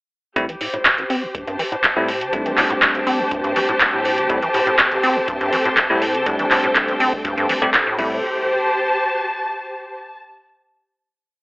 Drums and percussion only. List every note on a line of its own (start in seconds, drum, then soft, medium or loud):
0.36 kick loud
0.36 closed hi-hat medium
0.49 closed hi-hat medium
0.61 open hi-hat loud
0.74 closed hi-hat soft
0.85 kick loud
0.85 clap loud
0.85 closed hi-hat medium
0.98 closed hi-hat soft
1.10 open hi-hat medium
1.35 kick loud
1.35 closed hi-hat medium
1.47 closed hi-hat soft
1.59 open hi-hat loud
1.72 closed hi-hat soft
1.84 kick loud
1.84 clap loud
1.84 closed hi-hat medium
2.08 open hi-hat medium
2.21 closed hi-hat medium
2.33 kick loud
2.33 closed hi-hat medium
2.46 closed hi-hat medium
2.58 clap medium
2.58 open hi-hat loud
2.70 closed hi-hat soft
2.82 kick loud
2.82 clap loud
2.82 closed hi-hat medium
2.95 closed hi-hat soft
3.07 open hi-hat medium
3.31 kick loud
3.31 closed hi-hat medium
3.44 closed hi-hat soft
3.56 open hi-hat loud
3.69 closed hi-hat soft
3.81 kick loud
3.81 clap loud
3.81 closed hi-hat medium
4.05 open hi-hat loud
4.18 closed hi-hat medium
4.30 kick loud
4.30 closed hi-hat medium
4.42 closed hi-hat medium
4.54 open hi-hat loud
4.67 closed hi-hat soft
4.79 kick loud
4.79 clap loud
4.79 closed hi-hat medium
4.92 closed hi-hat soft
5.03 open hi-hat loud
5.28 kick loud
5.28 closed hi-hat medium
5.41 closed hi-hat soft
5.53 open hi-hat loud
5.65 closed hi-hat soft
5.77 kick loud
5.77 clap loud
5.77 closed hi-hat medium
6.02 open hi-hat medium
6.15 closed hi-hat soft
6.26 kick loud
6.26 closed hi-hat medium
6.39 closed hi-hat soft
6.51 clap medium
6.51 open hi-hat loud
6.64 closed hi-hat soft
6.76 kick loud
6.76 clap loud
6.76 closed hi-hat medium
6.88 closed hi-hat soft
7.00 open hi-hat loud
7.13 kick medium
7.25 kick loud
7.25 closed hi-hat medium
7.38 closed hi-hat soft
7.49 open hi-hat loud
7.62 closed hi-hat soft
7.74 kick loud
7.74 clap loud
7.74 closed hi-hat medium
7.99 kick loud
7.99 crash medium